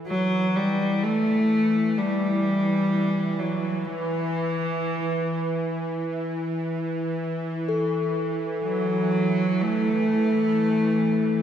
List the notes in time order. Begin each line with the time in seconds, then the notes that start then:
Already playing: E3 A4
0.07 F#3
0.56 G3
1.02 A3
1.98 G3
3.39 F#3
3.85 E3
7.69 A4
8.64 F#3
9.62 A3